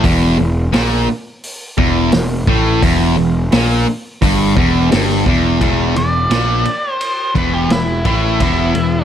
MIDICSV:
0, 0, Header, 1, 5, 480
1, 0, Start_track
1, 0, Tempo, 697674
1, 27, Time_signature, 4, 2, 24, 8
1, 6220, End_track
2, 0, Start_track
2, 0, Title_t, "Lead electric guitar"
2, 0, Program_c, 0, 29
2, 4108, Note_on_c, 0, 74, 99
2, 4761, Note_off_c, 0, 74, 0
2, 4761, Note_on_c, 0, 72, 99
2, 5038, Note_off_c, 0, 72, 0
2, 5071, Note_on_c, 0, 71, 66
2, 5183, Note_off_c, 0, 71, 0
2, 5187, Note_on_c, 0, 67, 79
2, 5301, Note_off_c, 0, 67, 0
2, 5311, Note_on_c, 0, 64, 77
2, 5540, Note_off_c, 0, 64, 0
2, 5550, Note_on_c, 0, 64, 71
2, 5779, Note_off_c, 0, 64, 0
2, 5800, Note_on_c, 0, 64, 87
2, 6220, Note_off_c, 0, 64, 0
2, 6220, End_track
3, 0, Start_track
3, 0, Title_t, "Distorted electric guitar"
3, 0, Program_c, 1, 30
3, 29, Note_on_c, 1, 40, 118
3, 258, Note_off_c, 1, 40, 0
3, 267, Note_on_c, 1, 40, 73
3, 458, Note_off_c, 1, 40, 0
3, 500, Note_on_c, 1, 46, 105
3, 735, Note_off_c, 1, 46, 0
3, 1224, Note_on_c, 1, 40, 85
3, 1456, Note_off_c, 1, 40, 0
3, 1472, Note_on_c, 1, 40, 60
3, 1659, Note_off_c, 1, 40, 0
3, 1705, Note_on_c, 1, 45, 96
3, 1936, Note_off_c, 1, 45, 0
3, 1946, Note_on_c, 1, 40, 102
3, 2176, Note_off_c, 1, 40, 0
3, 2187, Note_on_c, 1, 40, 65
3, 2375, Note_off_c, 1, 40, 0
3, 2427, Note_on_c, 1, 46, 95
3, 2656, Note_off_c, 1, 46, 0
3, 2908, Note_on_c, 1, 43, 97
3, 3137, Note_off_c, 1, 43, 0
3, 3145, Note_on_c, 1, 40, 95
3, 3375, Note_off_c, 1, 40, 0
3, 3381, Note_on_c, 1, 43, 94
3, 3613, Note_off_c, 1, 43, 0
3, 3623, Note_on_c, 1, 40, 107
3, 3854, Note_off_c, 1, 40, 0
3, 3863, Note_on_c, 1, 40, 97
3, 4094, Note_off_c, 1, 40, 0
3, 4104, Note_on_c, 1, 40, 65
3, 4294, Note_off_c, 1, 40, 0
3, 4341, Note_on_c, 1, 46, 88
3, 4574, Note_off_c, 1, 46, 0
3, 5057, Note_on_c, 1, 40, 91
3, 5292, Note_off_c, 1, 40, 0
3, 5301, Note_on_c, 1, 40, 61
3, 5494, Note_off_c, 1, 40, 0
3, 5538, Note_on_c, 1, 45, 100
3, 5774, Note_off_c, 1, 45, 0
3, 5780, Note_on_c, 1, 40, 99
3, 6015, Note_off_c, 1, 40, 0
3, 6024, Note_on_c, 1, 40, 73
3, 6216, Note_off_c, 1, 40, 0
3, 6220, End_track
4, 0, Start_track
4, 0, Title_t, "Picked electric bass"
4, 0, Program_c, 2, 34
4, 27, Note_on_c, 2, 28, 96
4, 249, Note_off_c, 2, 28, 0
4, 270, Note_on_c, 2, 28, 76
4, 491, Note_off_c, 2, 28, 0
4, 516, Note_on_c, 2, 34, 79
4, 734, Note_off_c, 2, 34, 0
4, 1223, Note_on_c, 2, 28, 90
4, 1446, Note_off_c, 2, 28, 0
4, 1468, Note_on_c, 2, 28, 77
4, 1688, Note_off_c, 2, 28, 0
4, 1702, Note_on_c, 2, 33, 84
4, 1924, Note_off_c, 2, 33, 0
4, 1943, Note_on_c, 2, 28, 88
4, 2165, Note_off_c, 2, 28, 0
4, 2192, Note_on_c, 2, 28, 73
4, 2410, Note_off_c, 2, 28, 0
4, 2429, Note_on_c, 2, 34, 82
4, 2648, Note_off_c, 2, 34, 0
4, 2906, Note_on_c, 2, 31, 87
4, 3126, Note_off_c, 2, 31, 0
4, 3143, Note_on_c, 2, 28, 84
4, 3364, Note_off_c, 2, 28, 0
4, 3392, Note_on_c, 2, 31, 89
4, 3609, Note_off_c, 2, 31, 0
4, 3621, Note_on_c, 2, 28, 91
4, 3844, Note_off_c, 2, 28, 0
4, 3864, Note_on_c, 2, 28, 81
4, 4085, Note_off_c, 2, 28, 0
4, 4106, Note_on_c, 2, 28, 68
4, 4326, Note_off_c, 2, 28, 0
4, 4344, Note_on_c, 2, 34, 71
4, 4565, Note_off_c, 2, 34, 0
4, 5059, Note_on_c, 2, 28, 83
4, 5284, Note_off_c, 2, 28, 0
4, 5294, Note_on_c, 2, 28, 73
4, 5521, Note_off_c, 2, 28, 0
4, 5538, Note_on_c, 2, 33, 81
4, 5764, Note_off_c, 2, 33, 0
4, 5782, Note_on_c, 2, 28, 95
4, 6006, Note_off_c, 2, 28, 0
4, 6022, Note_on_c, 2, 28, 77
4, 6220, Note_off_c, 2, 28, 0
4, 6220, End_track
5, 0, Start_track
5, 0, Title_t, "Drums"
5, 27, Note_on_c, 9, 36, 99
5, 27, Note_on_c, 9, 46, 52
5, 96, Note_off_c, 9, 36, 0
5, 96, Note_off_c, 9, 46, 0
5, 505, Note_on_c, 9, 46, 49
5, 510, Note_on_c, 9, 38, 100
5, 574, Note_off_c, 9, 46, 0
5, 579, Note_off_c, 9, 38, 0
5, 987, Note_on_c, 9, 46, 53
5, 1056, Note_off_c, 9, 46, 0
5, 1223, Note_on_c, 9, 36, 106
5, 1292, Note_off_c, 9, 36, 0
5, 1458, Note_on_c, 9, 46, 55
5, 1463, Note_on_c, 9, 38, 107
5, 1527, Note_off_c, 9, 46, 0
5, 1532, Note_off_c, 9, 38, 0
5, 1702, Note_on_c, 9, 36, 105
5, 1771, Note_off_c, 9, 36, 0
5, 1943, Note_on_c, 9, 36, 93
5, 1943, Note_on_c, 9, 46, 51
5, 2012, Note_off_c, 9, 36, 0
5, 2012, Note_off_c, 9, 46, 0
5, 2421, Note_on_c, 9, 46, 58
5, 2426, Note_on_c, 9, 38, 93
5, 2490, Note_off_c, 9, 46, 0
5, 2495, Note_off_c, 9, 38, 0
5, 2902, Note_on_c, 9, 36, 92
5, 2903, Note_on_c, 9, 46, 58
5, 2971, Note_off_c, 9, 36, 0
5, 2972, Note_off_c, 9, 46, 0
5, 3142, Note_on_c, 9, 36, 106
5, 3211, Note_off_c, 9, 36, 0
5, 3383, Note_on_c, 9, 46, 59
5, 3387, Note_on_c, 9, 38, 114
5, 3451, Note_off_c, 9, 46, 0
5, 3456, Note_off_c, 9, 38, 0
5, 3507, Note_on_c, 9, 38, 33
5, 3576, Note_off_c, 9, 38, 0
5, 3621, Note_on_c, 9, 36, 107
5, 3689, Note_off_c, 9, 36, 0
5, 3860, Note_on_c, 9, 36, 88
5, 3861, Note_on_c, 9, 51, 69
5, 3929, Note_off_c, 9, 36, 0
5, 3930, Note_off_c, 9, 51, 0
5, 4102, Note_on_c, 9, 51, 60
5, 4170, Note_off_c, 9, 51, 0
5, 4339, Note_on_c, 9, 51, 78
5, 4344, Note_on_c, 9, 38, 93
5, 4408, Note_off_c, 9, 51, 0
5, 4413, Note_off_c, 9, 38, 0
5, 4577, Note_on_c, 9, 51, 55
5, 4646, Note_off_c, 9, 51, 0
5, 4820, Note_on_c, 9, 51, 78
5, 4889, Note_off_c, 9, 51, 0
5, 5060, Note_on_c, 9, 36, 95
5, 5063, Note_on_c, 9, 51, 57
5, 5129, Note_off_c, 9, 36, 0
5, 5132, Note_off_c, 9, 51, 0
5, 5299, Note_on_c, 9, 51, 80
5, 5304, Note_on_c, 9, 38, 104
5, 5368, Note_off_c, 9, 51, 0
5, 5373, Note_off_c, 9, 38, 0
5, 5538, Note_on_c, 9, 51, 68
5, 5539, Note_on_c, 9, 36, 97
5, 5607, Note_off_c, 9, 51, 0
5, 5608, Note_off_c, 9, 36, 0
5, 5781, Note_on_c, 9, 36, 96
5, 5781, Note_on_c, 9, 51, 81
5, 5849, Note_off_c, 9, 36, 0
5, 5850, Note_off_c, 9, 51, 0
5, 6018, Note_on_c, 9, 51, 66
5, 6087, Note_off_c, 9, 51, 0
5, 6220, End_track
0, 0, End_of_file